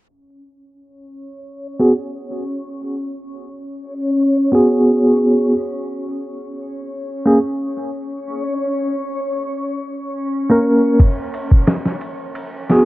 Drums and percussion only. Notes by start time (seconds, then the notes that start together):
11.00 kick, ride
11.34 ride
11.52 kick
11.67 snare, ride
11.86 snare
12.01 ride
12.35 ride
12.69 snare, ride